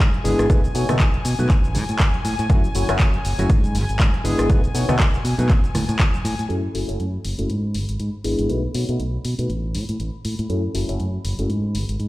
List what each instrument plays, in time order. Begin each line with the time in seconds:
Already playing: violin section G#5
0.00 kick, clap, closed hi-hat, cabasa
0.14 closed hi-hat, tambourine, high conga
0.24 fingered electric bass G#1, tine electric piano G#3 B3 D4 E4 G#4, open hi-hat, tambourine, low conga, cabasa
0.39 fingered electric bass G#1, cross-stick, closed hi-hat, tambourine, cabasa
0.49 fingered electric bass B1, tine electric piano A3 B3 D#4 F#4 B4, kick, closed hi-hat, tambourine, high conga, cabasa
0.64 closed hi-hat, tambourine, cabasa
0.74 fingered electric bass B2, tine electric piano A3 B3 D#4 F#4 C#5, open hi-hat, cabasa
0.89 fingered electric bass B2, tine electric piano A3 B3 D#4 F#4 A4, cross-stick, closed hi-hat, tambourine, high conga, low conga, cabasa
1.00 fingered electric bass B1, kick, clap, closed hi-hat, cabasa
1.14 closed hi-hat, tambourine
1.25 fingered electric bass B2, open hi-hat, tambourine, cabasa
1.39 fingered electric bass B2, tine electric piano A3 B3 D#4 F#4 B4, closed hi-hat, tambourine, high conga, cabasa
1.50 fingered electric bass A1, kick, clap, closed hi-hat, tambourine, cabasa
1.64 closed hi-hat, tambourine, cabasa
1.74 fingered electric bass A2, open hi-hat, tambourine, high conga, low conga, cabasa
1.89 fingered electric bass A2, closed hi-hat, tambourine, cabasa
1.99 fingered electric bass A1, kick, clap, closed hi-hat, tambourine, cabasa
2.14 closed hi-hat, tambourine, high conga
2.25 fingered electric bass A2, open hi-hat, tambourine, cabasa
2.39 fingered electric bass A2, closed hi-hat, tambourine, cabasa
2.50 fingered electric bass F#2, tine electric piano F#3 A3 C#4 E4 F#4, kick, closed hi-hat, tambourine, high conga, cabasa
2.64 closed hi-hat, tambourine, cabasa
2.75 fingered electric bass F#1, tine electric piano F#3 A3 C#4 E4 F#4, open hi-hat, cabasa
2.88 fingered electric bass F#1, tine electric piano F#3 A3 C#4 E4 F#4, cross-stick, closed hi-hat, tambourine, high conga, cabasa
2.99 fingered electric bass F#2, kick, clap, closed hi-hat, cabasa
3.14 closed hi-hat
3.25 fingered electric bass F#1, open hi-hat, tambourine, cabasa
3.39 fingered electric bass F#1, tine electric piano F#3 A3 C#4 E4 F#4, closed hi-hat, tambourine, high conga, cabasa
3.50 fingered electric bass G#2, kick, closed hi-hat, cabasa
3.64 closed hi-hat, tambourine, cabasa
3.75 fingered electric bass G#1, open hi-hat, tambourine, high conga, cabasa
3.89 fingered electric bass G#1, closed hi-hat, tambourine, cabasa
4.00 fingered electric bass G#2, kick, clap, closed hi-hat, cabasa
4.13 closed hi-hat, tambourine, high conga
4.24 fingered electric bass G#1, tine electric piano G#3 B3 D4 E4 G#4, open hi-hat, tambourine, low conga, cabasa
4.39 fingered electric bass G#1, cross-stick, closed hi-hat, tambourine, cabasa
4.49 tine electric piano F#4 B4, kick, closed hi-hat, tambourine, high conga, cabasa
4.64 closed hi-hat, tambourine, cabasa
4.74 fingered electric bass B2, tine electric piano A3 B3 D#4 F#4 C#5, open hi-hat, tambourine, cabasa
4.88 fingered electric bass B2, tine electric piano A3 B3 D#4 F#4 A4, cross-stick, closed hi-hat, tambourine, high conga, low conga, cabasa
4.99 fingered electric bass B1, kick, clap, closed hi-hat, cabasa
5.14 closed hi-hat, tambourine, cabasa
5.24 fingered electric bass B2, open hi-hat, tambourine, cabasa
5.38 fingered electric bass B2, tine electric piano A3 B3 D#4 F#4 B4, closed hi-hat, tambourine, high conga, cabasa
5.49 fingered electric bass A1, kick, clap, closed hi-hat, tambourine, cabasa
5.63 closed hi-hat, tambourine, cabasa
5.74 fingered electric bass A2, cross-stick, open hi-hat, tambourine, high conga, low conga, cabasa
5.89 fingered electric bass A2, closed hi-hat, tambourine, cabasa
5.99 fingered electric bass A1, kick, clap, closed hi-hat, cabasa
6.14 closed hi-hat, tambourine, high conga, cabasa
6.25 fingered electric bass A2, open hi-hat, tambourine, cabasa
6.39 fingered electric bass A2, closed hi-hat, tambourine, cabasa
6.49 fingered electric bass F#2, tine electric piano A3 C#4 E4 F#4 A4, violin section B5, closed hi-hat
6.74 fingered electric bass F#1, tine electric piano A3 C#4 E4 F#4 A4, open hi-hat
6.88 fingered electric bass F#1, tine electric piano A3 C#4 E4 F#4 A4, closed hi-hat
7.00 fingered electric bass F#2, closed hi-hat
7.25 fingered electric bass F#1, open hi-hat
7.38 fingered electric bass F#1, tine electric piano A3 C#4 E4 F#4 A4, closed hi-hat
7.50 fingered electric bass G#2, closed hi-hat
7.74 fingered electric bass G#1, open hi-hat
7.89 fingered electric bass G#1, closed hi-hat
8.00 fingered electric bass G#2, closed hi-hat
8.24 fingered electric bass G#1, tine electric piano G#3 B3 D4 E4 G#4, open hi-hat
8.39 fingered electric bass G#1, closed hi-hat
8.49 fingered electric bass B1, tine electric piano A3 B3 D#4 F#4 B4, closed hi-hat
8.74 fingered electric bass B2, tine electric piano A3 B3 D#4 F#4 C#5, open hi-hat
8.88 fingered electric bass B2, tine electric piano A3 B3 D#4 F#4 A4, closed hi-hat
9.00 fingered electric bass B1, closed hi-hat
9.25 fingered electric bass B2, open hi-hat
9.38 fingered electric bass B2, tine electric piano A3 B3 D#4 F#4 B4, closed hi-hat
9.50 fingered electric bass A1, closed hi-hat
9.75 fingered electric bass A2, open hi-hat
9.89 fingered electric bass A2, closed hi-hat
10.00 fingered electric bass A1, closed hi-hat
10.25 fingered electric bass A2, open hi-hat
10.39 fingered electric bass A2, closed hi-hat
10.49 fingered electric bass F#2, tine electric piano A3 C#4 E4 F#4 A4, closed hi-hat
10.74 fingered electric bass F#1, tine electric piano A3 C#4 E4 F#4 A4, open hi-hat
10.88 fingered electric bass F#1, tine electric piano A3 C#4 E4 F#4 A4, closed hi-hat
11.00 fingered electric bass F#2, closed hi-hat
11.25 fingered electric bass F#1, open hi-hat
11.39 fingered electric bass F#1, tine electric piano A3 C#4 E4 F#4 A4, closed hi-hat
11.49 fingered electric bass G#2, closed hi-hat
11.75 fingered electric bass G#1, open hi-hat
11.89 fingered electric bass G#1, closed hi-hat
11.99 fingered electric bass G#2, closed hi-hat